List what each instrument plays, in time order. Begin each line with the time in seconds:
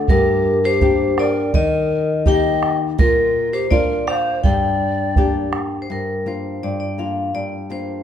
0.08 nylon-string guitar G2, pan flute G4, vibraphone A#4, bombo low
0.64 pan flute G4, vibraphone C5
0.81 nylon-string guitar A#3 D4 G4, bombo low
1.18 pan flute A#4, vibraphone D5, bombo rim
1.54 nylon-string guitar D#3, pan flute A#4, vibraphone D#5, bombo low
2.26 nylon-string guitar A#3 D#4 G4, pan flute D#5, vibraphone G5, bombo low
2.63 bombo rim
2.98 nylon-string guitar A#2, pan flute F4, vibraphone A#4, bombo low
3.53 pan flute G4, vibraphone C5
3.70 nylon-string guitar A#3 D4 F4, pan flute A#4, vibraphone D5, bombo low
4.07 pan flute C5, vibraphone F5, bombo rim
4.43 nylon-string guitar G2, pan flute D5, vibraphone G5, bombo low
5.16 nylon-string guitar A#3 D4 G4, bombo low
5.53 bombo rim
5.82 vibraphone C5
5.90 nylon-string guitar G2, vibraphone A#4
6.26 nylon-string guitar A#3 D4 F4, vibraphone C5
6.63 nylon-string guitar G2, vibraphone D5
6.80 vibraphone D5
6.98 nylon-string guitar A#3 D4 F4, vibraphone F5
7.34 nylon-string guitar G2, vibraphone D5
7.70 nylon-string guitar A#3 D4 F4, vibraphone C5